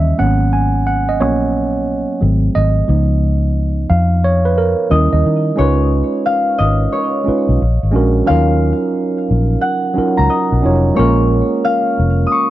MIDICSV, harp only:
0, 0, Header, 1, 2, 480
1, 0, Start_track
1, 0, Tempo, 674157
1, 124, Time_signature, 4, 2, 24, 8
1, 8900, End_track
2, 0, Start_track
2, 0, Title_t, "Harp"
2, 0, Program_c, 0, 46
2, 3495, Note_on_c, 0, 75, 85
2, 3976, Note_on_c, 0, 73, 80
2, 4455, Note_on_c, 0, 77, 82
2, 4685, Note_off_c, 0, 75, 0
2, 4688, Note_on_c, 0, 75, 83
2, 4927, Note_off_c, 0, 73, 0
2, 4930, Note_on_c, 0, 73, 62
2, 5640, Note_off_c, 0, 77, 0
2, 5890, Note_on_c, 0, 77, 101
2, 5958, Note_off_c, 0, 75, 0
2, 6291, Note_off_c, 0, 73, 0
2, 6845, Note_on_c, 0, 78, 73
2, 6887, Note_off_c, 0, 77, 0
2, 7244, Note_on_c, 0, 82, 83
2, 7331, Note_on_c, 0, 75, 71
2, 7806, Note_on_c, 0, 73, 87
2, 7989, Note_off_c, 0, 78, 0
2, 8240, Note_off_c, 0, 82, 0
2, 8292, Note_on_c, 0, 77, 89
2, 8602, Note_off_c, 0, 75, 0
2, 8734, Note_on_c, 0, 87, 78
2, 8770, Note_on_c, 0, 85, 81
2, 8900, Note_off_c, 0, 73, 0
2, 8900, Note_off_c, 0, 77, 0
2, 8900, Note_off_c, 0, 85, 0
2, 8900, Note_off_c, 0, 87, 0
2, 8900, End_track
0, 0, End_of_file